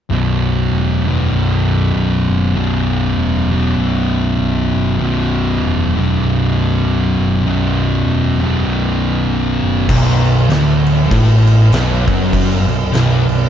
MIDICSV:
0, 0, Header, 1, 5, 480
1, 0, Start_track
1, 0, Key_signature, 2, "minor"
1, 0, Tempo, 610376
1, 87, Time_signature, 4, 2, 24, 8
1, 10609, End_track
2, 0, Start_track
2, 0, Title_t, "String machine"
2, 0, Program_c, 0, 50
2, 7754, Note_on_c, 0, 66, 73
2, 7757, Note_on_c, 0, 59, 82
2, 7761, Note_on_c, 0, 73, 87
2, 9666, Note_off_c, 0, 73, 0
2, 9695, Note_on_c, 0, 74, 84
2, 10609, Note_off_c, 0, 59, 0
2, 10609, Note_off_c, 0, 66, 0
2, 10609, Note_off_c, 0, 74, 0
2, 10609, End_track
3, 0, Start_track
3, 0, Title_t, "Distorted electric guitar"
3, 0, Program_c, 1, 30
3, 75, Note_on_c, 1, 35, 89
3, 90, Note_on_c, 1, 42, 89
3, 101, Note_on_c, 1, 47, 97
3, 831, Note_off_c, 1, 47, 0
3, 832, Note_off_c, 1, 42, 0
3, 834, Note_on_c, 1, 47, 82
3, 849, Note_on_c, 1, 42, 85
3, 861, Note_off_c, 1, 35, 0
3, 864, Note_on_c, 1, 35, 77
3, 1994, Note_off_c, 1, 35, 0
3, 1997, Note_on_c, 1, 35, 96
3, 1998, Note_off_c, 1, 42, 0
3, 2013, Note_on_c, 1, 42, 97
3, 2021, Note_off_c, 1, 47, 0
3, 2024, Note_on_c, 1, 47, 97
3, 2755, Note_off_c, 1, 42, 0
3, 2761, Note_off_c, 1, 47, 0
3, 2764, Note_on_c, 1, 47, 90
3, 2781, Note_on_c, 1, 42, 74
3, 2790, Note_off_c, 1, 35, 0
3, 2793, Note_on_c, 1, 35, 74
3, 3910, Note_off_c, 1, 35, 0
3, 3913, Note_on_c, 1, 35, 91
3, 3918, Note_off_c, 1, 42, 0
3, 3928, Note_on_c, 1, 42, 99
3, 3940, Note_off_c, 1, 47, 0
3, 3943, Note_on_c, 1, 47, 100
3, 4674, Note_off_c, 1, 42, 0
3, 4678, Note_off_c, 1, 47, 0
3, 4681, Note_on_c, 1, 47, 84
3, 4697, Note_on_c, 1, 42, 81
3, 4708, Note_off_c, 1, 35, 0
3, 4712, Note_on_c, 1, 35, 66
3, 5840, Note_off_c, 1, 35, 0
3, 5843, Note_on_c, 1, 35, 89
3, 5845, Note_off_c, 1, 42, 0
3, 5862, Note_on_c, 1, 42, 88
3, 5873, Note_off_c, 1, 47, 0
3, 5876, Note_on_c, 1, 47, 95
3, 6592, Note_off_c, 1, 35, 0
3, 6595, Note_off_c, 1, 47, 0
3, 6602, Note_off_c, 1, 42, 0
3, 6605, Note_on_c, 1, 47, 91
3, 6621, Note_on_c, 1, 42, 82
3, 6635, Note_on_c, 1, 35, 69
3, 7759, Note_off_c, 1, 47, 0
3, 7766, Note_off_c, 1, 35, 0
3, 7767, Note_off_c, 1, 42, 0
3, 7775, Note_on_c, 1, 35, 109
3, 8249, Note_off_c, 1, 35, 0
3, 8252, Note_on_c, 1, 38, 107
3, 8729, Note_off_c, 1, 38, 0
3, 8729, Note_on_c, 1, 45, 99
3, 9201, Note_off_c, 1, 45, 0
3, 9205, Note_on_c, 1, 35, 110
3, 9480, Note_off_c, 1, 35, 0
3, 9490, Note_on_c, 1, 42, 95
3, 9962, Note_off_c, 1, 42, 0
3, 9965, Note_on_c, 1, 35, 73
3, 10129, Note_off_c, 1, 35, 0
3, 10161, Note_on_c, 1, 35, 112
3, 10433, Note_off_c, 1, 35, 0
3, 10443, Note_on_c, 1, 35, 77
3, 10607, Note_off_c, 1, 35, 0
3, 10609, End_track
4, 0, Start_track
4, 0, Title_t, "Picked electric bass"
4, 0, Program_c, 2, 34
4, 82, Note_on_c, 2, 23, 91
4, 533, Note_off_c, 2, 23, 0
4, 565, Note_on_c, 2, 28, 87
4, 1015, Note_off_c, 2, 28, 0
4, 1045, Note_on_c, 2, 23, 88
4, 1496, Note_off_c, 2, 23, 0
4, 1524, Note_on_c, 2, 23, 85
4, 1782, Note_off_c, 2, 23, 0
4, 1801, Note_on_c, 2, 30, 87
4, 1987, Note_off_c, 2, 30, 0
4, 2005, Note_on_c, 2, 23, 87
4, 2456, Note_off_c, 2, 23, 0
4, 2488, Note_on_c, 2, 28, 85
4, 2938, Note_off_c, 2, 28, 0
4, 2969, Note_on_c, 2, 23, 90
4, 3419, Note_off_c, 2, 23, 0
4, 3449, Note_on_c, 2, 23, 89
4, 3706, Note_off_c, 2, 23, 0
4, 3725, Note_on_c, 2, 30, 80
4, 3911, Note_off_c, 2, 30, 0
4, 3932, Note_on_c, 2, 23, 94
4, 4381, Note_off_c, 2, 23, 0
4, 4413, Note_on_c, 2, 28, 88
4, 4862, Note_off_c, 2, 28, 0
4, 4894, Note_on_c, 2, 23, 88
4, 5343, Note_off_c, 2, 23, 0
4, 5369, Note_on_c, 2, 23, 87
4, 5627, Note_off_c, 2, 23, 0
4, 5651, Note_on_c, 2, 30, 90
4, 5836, Note_off_c, 2, 30, 0
4, 5847, Note_on_c, 2, 23, 89
4, 6300, Note_off_c, 2, 23, 0
4, 6330, Note_on_c, 2, 28, 90
4, 6782, Note_off_c, 2, 28, 0
4, 6809, Note_on_c, 2, 23, 88
4, 7261, Note_off_c, 2, 23, 0
4, 7286, Note_on_c, 2, 23, 94
4, 7546, Note_off_c, 2, 23, 0
4, 7570, Note_on_c, 2, 30, 85
4, 7756, Note_off_c, 2, 30, 0
4, 7779, Note_on_c, 2, 23, 97
4, 8225, Note_off_c, 2, 23, 0
4, 8246, Note_on_c, 2, 26, 92
4, 8699, Note_off_c, 2, 26, 0
4, 8738, Note_on_c, 2, 33, 102
4, 9184, Note_off_c, 2, 33, 0
4, 9213, Note_on_c, 2, 23, 101
4, 9473, Note_off_c, 2, 23, 0
4, 9498, Note_on_c, 2, 30, 102
4, 9943, Note_off_c, 2, 30, 0
4, 9968, Note_on_c, 2, 23, 84
4, 10156, Note_off_c, 2, 23, 0
4, 10165, Note_on_c, 2, 23, 93
4, 10427, Note_off_c, 2, 23, 0
4, 10445, Note_on_c, 2, 23, 80
4, 10609, Note_off_c, 2, 23, 0
4, 10609, End_track
5, 0, Start_track
5, 0, Title_t, "Drums"
5, 7779, Note_on_c, 9, 36, 111
5, 7782, Note_on_c, 9, 49, 124
5, 7782, Note_on_c, 9, 57, 82
5, 7857, Note_off_c, 9, 36, 0
5, 7861, Note_off_c, 9, 49, 0
5, 7861, Note_off_c, 9, 57, 0
5, 8062, Note_on_c, 9, 57, 63
5, 8141, Note_off_c, 9, 57, 0
5, 8257, Note_on_c, 9, 57, 83
5, 8271, Note_on_c, 9, 38, 109
5, 8336, Note_off_c, 9, 57, 0
5, 8349, Note_off_c, 9, 38, 0
5, 8543, Note_on_c, 9, 57, 67
5, 8622, Note_off_c, 9, 57, 0
5, 8740, Note_on_c, 9, 36, 111
5, 8743, Note_on_c, 9, 57, 88
5, 8819, Note_off_c, 9, 36, 0
5, 8822, Note_off_c, 9, 57, 0
5, 9021, Note_on_c, 9, 57, 69
5, 9100, Note_off_c, 9, 57, 0
5, 9220, Note_on_c, 9, 57, 84
5, 9233, Note_on_c, 9, 38, 108
5, 9298, Note_off_c, 9, 57, 0
5, 9312, Note_off_c, 9, 38, 0
5, 9498, Note_on_c, 9, 36, 108
5, 9502, Note_on_c, 9, 57, 68
5, 9577, Note_off_c, 9, 36, 0
5, 9581, Note_off_c, 9, 57, 0
5, 9698, Note_on_c, 9, 36, 102
5, 9700, Note_on_c, 9, 57, 91
5, 9777, Note_off_c, 9, 36, 0
5, 9779, Note_off_c, 9, 57, 0
5, 9974, Note_on_c, 9, 57, 66
5, 10053, Note_off_c, 9, 57, 0
5, 10173, Note_on_c, 9, 57, 77
5, 10186, Note_on_c, 9, 38, 113
5, 10251, Note_off_c, 9, 57, 0
5, 10265, Note_off_c, 9, 38, 0
5, 10450, Note_on_c, 9, 57, 59
5, 10528, Note_off_c, 9, 57, 0
5, 10609, End_track
0, 0, End_of_file